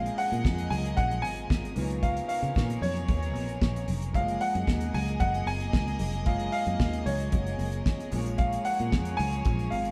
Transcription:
Already playing: C#3 F3 G#3 A#3 C4 C#4 G#4 A#4 D#5 F5
0.06 closed hi-hat, muted conga
0.18 F#5, open hi-hat
0.32 A#2, closed hi-hat, high conga
0.44 F2, kick, snare, muted conga
0.58 closed hi-hat, muted conga, high conga
0.70 C#2 G#5, open hi-hat, low conga
0.86 closed hi-hat
0.97 A#1 F#5, kick, closed hi-hat, high conga, low conga
1.11 closed hi-hat, muted conga
1.22 G#1 G#5, open hi-hat, high conga
1.37 closed hi-hat
1.50 G#1, kick, snare, muted conga
1.64 closed hi-hat, high conga
1.75 C#2 B2 A#3 B3 D#4 F4 G#4 C#5, open hi-hat, low conga
1.90 closed hi-hat
2.03 F5, kick, closed hi-hat, muted conga
2.17 closed hi-hat
2.28 F5, open hi-hat
2.42 C#3, closed hi-hat, high conga
2.55 A#2, kick, snare, muted conga
2.70 closed hi-hat, high conga
2.82 F2 C#5, open hi-hat, low conga
2.97 closed hi-hat
3.08 D#2, kick, closed hi-hat, muted conga, high conga, low conga
3.23 closed hi-hat, muted conga
3.34 A#1, open hi-hat, high conga
3.48 closed hi-hat
3.62 A#1, kick, snare
3.76 closed hi-hat, high conga
3.88 F1, open hi-hat, low conga
4.02 closed hi-hat
4.13 F#1 C#3 F3 G#3 A3 A#3 C#4 G#4 D#5 F5, kick, closed hi-hat, muted conga
4.20 A#3
4.28 closed hi-hat
4.41 F#5, open hi-hat
4.55 F#2, closed hi-hat, high conga
4.67 D#2, kick, snare, muted conga
4.80 closed hi-hat, muted conga, high conga
4.94 C#2 G#5, open hi-hat, low conga
5.08 closed hi-hat
5.20 F#1 F#5, kick, closed hi-hat, muted conga, high conga, low conga
5.34 closed hi-hat, muted conga
5.46 F#1 G#5, open hi-hat, high conga
5.60 closed hi-hat
5.73 C#2, kick, snare
5.88 closed hi-hat, muted conga, high conga
5.99 F1, open hi-hat, low conga
6.13 closed hi-hat
6.25 F#1 G#3 A#3 C#4 F4 F5, kick, closed hi-hat
6.40 closed hi-hat, muted conga
6.52 F5, open hi-hat
6.67 F#2, closed hi-hat, high conga
6.79 D#2, kick, snare, muted conga
6.93 closed hi-hat, muted conga, high conga
7.06 C#2 C#5, open hi-hat, low conga
7.20 closed hi-hat
7.32 F#1 G#3 A#3 C#4 F#4, kick, closed hi-hat, muted conga, high conga, low conga
7.47 closed hi-hat
7.58 F#1, open hi-hat, high conga
7.72 closed hi-hat
7.86 kick, snare
8.00 closed hi-hat, muted conga, high conga
8.11 A#1 F3 G#3 A#3 C#4 G#4 C#5, open hi-hat, low conga
8.26 closed hi-hat
8.38 F5, kick, closed hi-hat, muted conga
8.53 closed hi-hat
8.65 F#5, open hi-hat
8.79 A#2, closed hi-hat, high conga
8.92 F2, kick, snare
9.05 closed hi-hat, high conga
9.17 C#2 G#5, open hi-hat, low conga
9.33 closed hi-hat
9.45 A#1 G#3 A#3 C#4 F4, kick, closed hi-hat, muted conga, high conga, low conga
9.59 closed hi-hat, muted conga
9.70 G#1 F5, open hi-hat, high conga
9.85 closed hi-hat

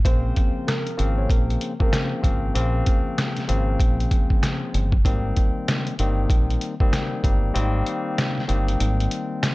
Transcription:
0.04 A#1 C#3 F3 A#3 C4 C5, kick, closed hi-hat
0.36 kick, closed hi-hat
0.67 A#3 A#4, cross-stick, snare, closed hi-hat
0.87 closed hi-hat
0.97 G#1 C#3 F3 A#3 C4, closed hi-hat
1.18 C#4 C#5
1.30 A#1 A#3 A#4, kick, closed hi-hat
1.50 closed hi-hat
1.61 closed hi-hat
1.79 C#3 F3 A#3 C4 A#4, kick
1.93 cross-stick, snare, closed hi-hat
2.22 G#1 C#3 F3 A#3 C4, kick, closed hi-hat
2.54 A#1 C#3 F3 A#3 C4, closed hi-hat
2.86 kick, closed hi-hat
3.18 cross-stick, snare, closed hi-hat
3.37 snare, closed hi-hat
3.48 G#1 C#3 F3 A#3 C4, closed hi-hat
3.80 A#1, kick, closed hi-hat
4.00 closed hi-hat
4.11 kick, closed hi-hat
4.30 kick
4.43 cross-stick, snare, closed hi-hat
4.74 G1, closed hi-hat
4.92 kick
5.04 G#1 D#3 G3 A#3 C4, kick, closed hi-hat
5.37 kick, closed hi-hat
5.68 cross-stick, snare, closed hi-hat
5.87 closed hi-hat
5.99 G1 D#3 G3 A#3 C4, closed hi-hat
6.30 A#1, kick, closed hi-hat
6.50 closed hi-hat
6.61 closed hi-hat
6.80 D#3 G3 A#3 C4, kick
6.93 cross-stick, snare, closed hi-hat
7.23 G1 D#3 G3 A#3 C4, kick, closed hi-hat
7.54 G#1 D#3 G3 A#3 C4, closed hi-hat
7.86 closed hi-hat
8.18 cross-stick, snare, closed hi-hat
8.38 snare
8.48 G1 D#3 G3 A#3 C4, closed hi-hat
8.68 closed hi-hat
8.80 G#1, closed hi-hat
9.00 closed hi-hat
9.11 closed hi-hat
9.43 cross-stick, snare, closed hi-hat

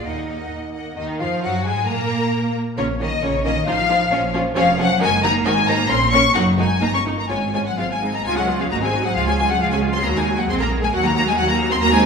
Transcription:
0.03 D#2 A#3 D#4 D#5 F#5
0.27 A#3 D#5 F#5
0.51 D#2
0.74 A#3 D#5 F#5
0.96 D#2 D#3 D#4 D#5
1.19 F2 F3 F4 F5
1.42 F#2 F#3 F#4 F#5
1.65 G#2 G#3 G#4 G#5
1.87 A#2 A#3 A#4 A#5
2.77 A#1 C#3 A#3 C#4 F4 A#4 C#5
3.00 D#3 A#3 C#4 F4 A#4 D#5
3.23 A#1 C#3 A#3 C#4 F4 A#4 C#5
3.44 D#3 A#3 C#4 F4 A#4 D#5
3.67 A1 F3 D#4 F4 C5 F5
3.89 F3 D#4 F4 C5
4.12 A#1 F3 C#4 F4 C#5
4.33 F3 C#4 F4 C#5
4.55 F1 F3 C#4 G#4 C#5 F5
4.78 F3 F#3 C#4 G#4 C#5 F#5
5.00 F#1 D#3 G#3 D#4 F#4 A#4 G#5
5.22 D#3 A#3 D#4 F#4 A#4 A#5
5.45 G#1 D#3 G#3 D#4 F#4 C5 G#5
5.67 D#3 A#3 D#4 F#4 C5 A#5
5.89 A#1 A#3 C4 C#4 F4 A#4 C6
6.12 A#3 C#4 F4 A#4 C#6
6.34 F#1 F#3 A#3 D#4 F#4 A#4 F#5
6.57 G#3 A#3 D#4 F#4 A#4 G#5
6.81 G1 A#3 D#4 A#4 A#5
6.93 C#4 C#6
7.05 A#3 D#4 A#4
7.17 A#3 A#5
7.29 G#1 G#3 C#4 F4 C#5 G#5
7.54 G#3 C#4 F4 C#5 G#5
7.66 F#3 F#5
7.77 G#1 F3 G#3 C4 F4 F5
7.89 G#3 G#5
8.02 G#3 C4 D#4
8.14 A#3 A#5
8.25 C#2 G#3 F4 G#5
8.37 F#3 C#4 G#4 F#5
8.48 G#3 F4
8.59 F3 C#4 G#4 F5
8.70 G#1 A#3 D#4 F#4 A#5
8.82 G#3 C4 G#4 G#5
8.93 D#4 F#4
9.04 F#3 C4 G#4 F#5
9.16 C#2 F3 G#3 F4 F5
9.26 G#3 C#4 G#4 G#5
9.37 G#3 F4 G#5
9.49 F#3 C#4 G#4 F#5
9.60 C#2 F3 G#3 F4 F5
9.70 G#3 C#4 G#4 G#5
9.82 G#3 F4
9.93 C4 C#4 G#4 C6
10.03 D#2 F#3 A#3 F#4 A#5
10.16 G#3 A#3 D#4 G#5
10.28 F#3 F#4
10.38 F#3 A#3 D#4 F#5
10.49 A#1 G#3 C4 G#4 C6
10.60 A#3 A#4 A#5
10.71 G#3 G#4
10.82 G#3 A#3 A#4 G#5
10.93 D#2 F#3 F#4 F#5
11.04 A#3 D#4 A#5
11.15 F#3 A#3 F#4 A#5
11.26 G#3 A#3 D#4 G#5
11.37 D#2 F#3 F#4 F#5
11.48 A#3 D#4 A#5
11.59 F#3 F#4
11.70 A#3 C4 D#4 C6
11.81 D#2 A#3 F#4 A#5
11.92 G#3 C4 D#4 G#5

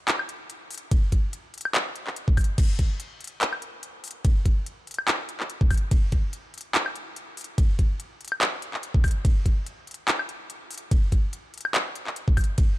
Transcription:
0.08 clap, closed hi-hat
0.19 high woodblock
0.29 closed hi-hat
0.50 closed hi-hat
0.71 closed hi-hat, open hi-hat
0.78 closed hi-hat
0.91 kick, closed hi-hat, ride
1.12 kick, closed hi-hat
1.33 closed hi-hat
1.54 closed hi-hat
1.58 closed hi-hat
1.61 closed hi-hat
1.65 high woodblock
1.75 clap, closed hi-hat
1.96 closed hi-hat
2.07 clap
2.16 closed hi-hat
2.28 kick
2.37 kick, closed hi-hat, open hi-hat, high woodblock
2.44 closed hi-hat
2.58 kick, closed hi-hat, crash, ride
2.79 kick, closed hi-hat
3.00 closed hi-hat
3.21 closed hi-hat
3.24 closed hi-hat
3.27 closed hi-hat
3.41 clap, closed hi-hat
3.53 high woodblock
3.62 closed hi-hat
3.83 closed hi-hat
4.04 closed hi-hat, open hi-hat
4.11 closed hi-hat
4.25 kick, closed hi-hat, ride
4.46 kick, closed hi-hat
4.66 closed hi-hat
4.87 closed hi-hat
4.91 closed hi-hat
4.94 closed hi-hat
4.99 high woodblock
5.08 clap, closed hi-hat
5.29 closed hi-hat
5.40 clap
5.50 closed hi-hat
5.61 kick
5.71 kick, closed hi-hat, open hi-hat, high woodblock
5.77 closed hi-hat
5.91 kick, closed hi-hat, ride
6.12 kick, closed hi-hat
6.33 closed hi-hat
6.54 closed hi-hat
6.58 closed hi-hat
6.61 closed hi-hat
6.75 clap, closed hi-hat
6.86 high woodblock
6.96 closed hi-hat
7.16 closed hi-hat
7.37 closed hi-hat, open hi-hat
7.44 closed hi-hat
7.58 kick, closed hi-hat, ride
7.79 kick, closed hi-hat
8.00 closed hi-hat
8.21 closed hi-hat
8.24 closed hi-hat
8.28 closed hi-hat
8.32 high woodblock
8.41 clap, closed hi-hat
8.62 closed hi-hat
8.74 clap
8.83 closed hi-hat
8.94 kick
9.04 kick, closed hi-hat, open hi-hat, high woodblock
9.11 closed hi-hat
9.25 kick, closed hi-hat, ride
9.46 kick, closed hi-hat
9.66 closed hi-hat
9.87 closed hi-hat
9.91 closed hi-hat
9.94 closed hi-hat
10.08 clap, closed hi-hat
10.19 high woodblock
10.29 closed hi-hat
10.50 closed hi-hat
10.71 closed hi-hat, open hi-hat
10.78 closed hi-hat
10.91 kick, closed hi-hat, ride
11.12 kick, closed hi-hat
11.33 closed hi-hat
11.54 closed hi-hat
11.58 closed hi-hat
11.61 closed hi-hat
11.65 high woodblock
11.75 clap, closed hi-hat
11.95 closed hi-hat
12.07 clap
12.16 closed hi-hat
12.28 kick
12.37 kick, closed hi-hat, open hi-hat, high woodblock
12.44 closed hi-hat
12.58 kick, closed hi-hat, ride

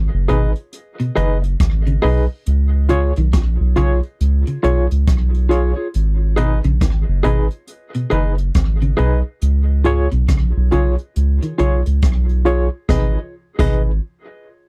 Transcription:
Already playing: G#1
0.14 F#1
0.28 G#1 B2 D#4 G#4 B4 D#5, closed hi-hat
0.55 closed hi-hat
0.73 closed hi-hat
0.99 B2, closed hi-hat
1.15 F#1 D#3 D#4 G#4 B4 D#5, closed hi-hat
1.42 muted clean electric guitar stroke, closed hi-hat
1.60 G#1, kick, cross-stick, closed hi-hat
1.86 C#3, closed hi-hat
2.02 B1 B2 D#4 G#4 B4 D#5, open hi-hat
2.46 C#2, closed hi-hat
2.89 C#3 F4 G#4 C#5, closed hi-hat
3.16 B1 D#3, closed hi-hat
3.33 A#1 F3, kick, cross-stick, closed hi-hat
3.60 B1
3.76 B1 C#3 F4 G#4 C#5, closed hi-hat
4.03 closed hi-hat
4.20 C#2, closed hi-hat
4.47 C#3, closed hi-hat
4.63 B1 B2 F4 G#4 C#5, closed hi-hat
4.90 C#2, muted clean electric guitar stroke, closed hi-hat
5.07 B1, kick, cross-stick, closed hi-hat
5.34 closed hi-hat
5.49 F4 G#4 C#5, closed hi-hat
5.76 F4 G#4 C#5
5.94 G#1, closed hi-hat
6.36 B2 D#4 G#4 B4 D#5, closed hi-hat
6.64 A#1 C#3, closed hi-hat
6.81 G#1 D#3, kick, cross-stick, closed hi-hat
7.08 F#1
7.23 G#1 B2 D#4 G#4 B4 D#5, closed hi-hat
7.50 closed hi-hat
7.67 closed hi-hat
7.94 B2, closed hi-hat
8.10 F#1 D#3 D#4 G#4 B4 D#5, closed hi-hat
8.37 muted clean electric guitar stroke, closed hi-hat
8.54 G#1, kick, cross-stick, closed hi-hat
8.81 C#3, closed hi-hat
8.97 B1 B2 D#4 G#4 B4 D#5, closed hi-hat
9.41 C#2, closed hi-hat
9.84 G#2 F4 G#4 C#5, closed hi-hat
10.11 B1 B2, closed hi-hat
10.28 A#1 C#3, kick, cross-stick, closed hi-hat
10.57 B1
10.71 B1 C#3 F4 G#4 C#5, closed hi-hat
10.98 closed hi-hat
11.16 C#2, closed hi-hat
11.42 D#3, closed hi-hat
11.58 B1 C#3 F4 G#4 C#5, closed hi-hat
11.86 C#2, muted clean electric guitar stroke, closed hi-hat
12.02 B1, kick, cross-stick, closed hi-hat
12.29 closed hi-hat
12.45 F4 G#4 C#5, closed hi-hat
12.89 G#1 B2 D#4 G#4 B4 D#5, kick, snare
13.59 G#1 B2 D#4 G#4 B4 D#5, kick, crash

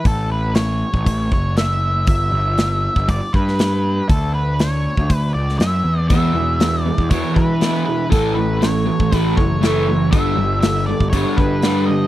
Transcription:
0.05 A1 A4, kick, open hi-hat
0.32 B4
0.55 C#5, snare, open hi-hat
0.94 A1, kick
1.06 A1, kick, open hi-hat
1.32 F#1 C#5, kick
1.57 E5, snare, open hi-hat
2.07 G1 E5, kick, open hi-hat
2.32 G1
2.58 snare, open hi-hat
2.96 G1, kick
3.08 G1 D5, kick, open hi-hat
3.33 G2 B4, kick
3.48 snare
3.59 snare, open hi-hat
4.09 D2 A4, kick, open hi-hat
4.34 B4
4.59 C#5, snare, open hi-hat
4.97 D2, kick
5.10 D2, kick, open hi-hat
5.17 B4
5.34 C#2 D5
5.49 snare
5.58 F#2 E5, snare, open hi-hat
5.84 E2
6.08 E2 B2 E3 E5, kick, open hi-hat
6.34 E2 B2
6.60 E2 B2, snare, open hi-hat
6.81 D5
6.86 E2 B2
6.98 E2, kick
7.10 E2 B2 E3 C#5, kick, open hi-hat
7.34 E2 B2 E3 B4, kick
7.61 E2 B2 E3, snare, open hi-hat
7.85 E2 B2 B4
8.10 A1 A2 E3 A3 A4, kick, open hi-hat
8.34 A2 E3 B4
8.59 A2 E3 C#5, snare, open hi-hat
8.86 A2 E3
9.00 A1, kick
9.12 A1 A2 E3 A3, kick, open hi-hat
9.17 B4
9.37 F#1 A2 E3 C#5, kick
9.61 A2 E3 A3, snare, open hi-hat
9.87 A2 E3
10.11 G1 G2 D3 G3 E5, kick, open hi-hat
10.37 G1 G2 D3
10.61 G2 D3 E5, snare, open hi-hat
10.86 G2 D3 D5
11.00 G1, kick
11.10 G1 G2 D3 C#5, kick, open hi-hat
11.14 G3
11.36 G2 D3 B4, kick
11.62 G2 D3 G3, snare, open hi-hat
11.86 G2 D3 D#5

